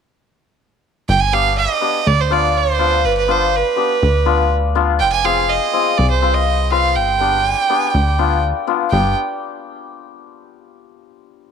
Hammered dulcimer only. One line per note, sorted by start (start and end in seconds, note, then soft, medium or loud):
1.32 1.45 B3 medium
1.32 1.45 D4 medium
1.32 1.45 G4 medium
1.81 1.94 B3 medium
1.81 1.94 D4 medium
1.81 1.94 G4 medium
2.30 2.43 B3 medium
2.30 2.42 D4 medium
2.30 2.43 F4 medium
2.79 2.91 B3 medium
2.79 2.91 D4 medium
2.79 2.91 F4 medium
3.28 3.40 B3 medium
3.28 3.40 D4 medium
3.28 3.41 F4 medium
3.76 3.89 B3 medium
3.76 3.89 D4 medium
3.76 3.89 G4 medium
4.25 4.38 B3 medium
4.25 4.38 D4 medium
4.25 4.38 F4 medium
4.75 4.88 B3 medium
4.75 4.87 D4 medium
4.75 4.88 F4 medium
5.24 5.37 C4 medium
5.24 5.37 F4 medium
5.24 5.37 G#4 medium
5.73 5.86 C4 medium
5.73 5.86 F4 medium
5.73 5.86 G#4 medium
6.22 6.35 C4 medium
6.22 6.35 F4 medium
6.22 6.35 B4 medium
6.71 6.84 C4 medium
6.71 6.84 F4 medium
6.71 6.84 B4 medium
7.20 7.33 B3 medium
7.20 7.33 D4 medium
7.20 7.33 G4 medium
7.70 7.82 B3 medium
7.70 7.82 D4 medium
7.70 7.82 G4 medium
8.19 8.31 B3 medium
8.19 8.31 D4 medium
8.19 8.31 F4 medium
8.67 8.80 B3 medium
8.67 8.80 D4 medium
8.67 8.80 F4 medium
8.92 9.15 B3 medium
8.92 9.15 D4 medium
8.92 9.15 G4 medium